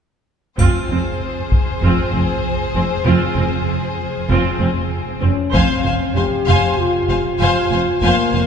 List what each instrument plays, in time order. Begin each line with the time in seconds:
0.58 double bass section F1, cello section F2, viola section C4 F4, violin section G#4 C5, taiko, triangle
0.90 double bass section F1, cello section F2, viola section C4
1.51 taiko
1.83 double bass section F1, cello section F2, viola section C4 F4
2.14 double bass section F1, cello section F2, viola section C4
2.75 double bass section F1, cello section F2, viola section C4
3.05 double bass section F1, cello section F2, viola section C4 F4
3.36 double bass section F1, cello section F2, viola section C4
4.29 double bass section F1, cello section F2, viola section C4 F4
4.59 double bass section F1, cello section F2, viola section C4
5.21 double bass section F1, cello section F2, viola section C4, french horn section C#4
5.53 double bass section F1, cello section F2, french horn section C4, viola section C5, violin section F5 G#5, taiko
5.84 double bass section F1, cello section F2, viola section C5, violin section F5 G#5
6.15 double bass section F1, cello section F2, french horn section G4, viola section C5, violin section F5 G#5
6.47 double bass section F1, cello section F2, viola section C5, violin section F5 G#5
6.78 french horn section F4
7.09 double bass section F1, cello section F2, viola section C5, violin section F5 G#5
7.40 double bass section F1, cello section F2, viola section C5, violin section F5 G#5
7.71 double bass section F1, cello section F2, viola section C5, violin section F5 G#5
8.01 double bass section F1, cello section F2, french horn section A#3, viola section C5, violin section F5 G#5
8.33 double bass section F1, cello section F2, viola section C5, violin section F5 G#5